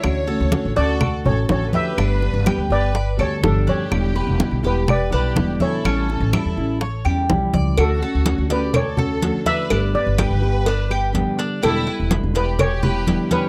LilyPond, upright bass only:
\new Staff \with { instrumentName = "Upright bass" } { \clef bass \time 4/4 \key d \major \tempo 4 = 124 d,8. d,16 r16 a,,16 d,4 a,,8 a,,8 r8 | g,,8. g,,16 r16 d,16 g,,4 d,8 g,,8 r8 | e,,8. e,,16 r16 b,,16 e,,4 b,,8 e,,8 r8 | a,,8. a,,16 r16 e,16 a,,4 e,8 b,,8 cis,8 |
d,8 r16 d,8 d,2 r8. | g,,8 r16 g,,8 g,,2 r8. | e,,8 r16 e,,8 e,,2 r8. | }